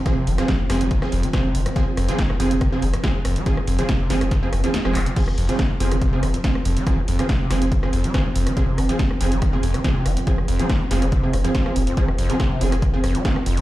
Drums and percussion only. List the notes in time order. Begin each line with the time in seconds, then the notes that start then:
0.06 kick, cross-stick, closed hi-hat
0.27 open hi-hat
0.38 cross-stick, closed hi-hat
0.48 kick, snare, closed hi-hat
0.70 cross-stick, snare, open hi-hat
0.81 closed hi-hat
0.91 kick, closed hi-hat
1.02 cross-stick
1.12 open hi-hat
1.23 closed hi-hat
1.33 kick, cross-stick, snare, closed hi-hat
1.55 open hi-hat
1.66 cross-stick, closed hi-hat
1.76 kick, closed hi-hat
1.97 cross-stick, open hi-hat
2.09 closed hi-hat
2.18 kick, snare, closed hi-hat
2.30 cross-stick
2.40 open hi-hat
2.51 closed hi-hat
2.61 kick, cross-stick, closed hi-hat
2.82 open hi-hat
2.94 cross-stick, closed hi-hat
3.04 kick, snare, closed hi-hat
3.25 cross-stick, open hi-hat
3.36 closed hi-hat
3.46 kick, closed hi-hat
3.57 cross-stick
3.67 open hi-hat
3.79 closed hi-hat
3.89 kick, cross-stick, snare, closed hi-hat
4.10 snare, open hi-hat
4.21 cross-stick, closed hi-hat
4.31 kick, snare, closed hi-hat
4.53 cross-stick, open hi-hat
4.64 closed hi-hat
4.74 snare, closed hi-hat
4.85 cross-stick
4.95 clap, open hi-hat
5.06 closed hi-hat
5.16 kick, closed hi-hat, crash
5.28 cross-stick
5.38 open hi-hat
5.49 closed hi-hat
5.59 kick, cross-stick, snare, closed hi-hat
5.80 open hi-hat
5.92 cross-stick, closed hi-hat
6.01 kick, closed hi-hat
6.23 cross-stick, open hi-hat
6.34 closed hi-hat
6.44 kick, snare, closed hi-hat
6.55 cross-stick
6.65 open hi-hat
6.77 closed hi-hat
6.87 kick, cross-stick, closed hi-hat
7.08 open hi-hat
7.19 cross-stick, closed hi-hat
7.29 kick, snare, closed hi-hat
7.51 cross-stick, snare, open hi-hat
7.62 closed hi-hat
7.72 kick, closed hi-hat
7.83 cross-stick
7.93 open hi-hat
8.04 closed hi-hat
8.14 kick, cross-stick, snare, closed hi-hat
8.36 open hi-hat
8.47 cross-stick, closed hi-hat
8.57 kick, closed hi-hat
8.78 cross-stick, open hi-hat
8.89 closed hi-hat
8.99 kick, snare, closed hi-hat
9.11 cross-stick
9.21 open hi-hat
9.32 closed hi-hat
9.42 kick, cross-stick, closed hi-hat
9.63 open hi-hat
9.74 cross-stick, closed hi-hat
9.84 kick, snare, closed hi-hat
10.06 cross-stick, open hi-hat
10.17 closed hi-hat
10.27 kick, closed hi-hat
10.38 cross-stick
10.48 open hi-hat
10.59 closed hi-hat
10.70 kick, cross-stick, snare, closed hi-hat
10.91 snare, open hi-hat
11.02 cross-stick, closed hi-hat
11.12 kick, closed hi-hat
11.33 cross-stick, open hi-hat
11.45 closed hi-hat
11.55 kick, snare, closed hi-hat
11.66 cross-stick
11.76 open hi-hat
11.87 closed hi-hat
11.97 kick, closed hi-hat
12.08 cross-stick
12.18 open hi-hat
12.30 closed hi-hat
12.40 kick, cross-stick, snare, closed hi-hat
12.61 open hi-hat
12.72 cross-stick, closed hi-hat
12.82 kick, closed hi-hat
13.04 cross-stick, open hi-hat
13.15 closed hi-hat
13.25 kick, snare, closed hi-hat
13.36 cross-stick
13.46 open hi-hat
13.57 closed hi-hat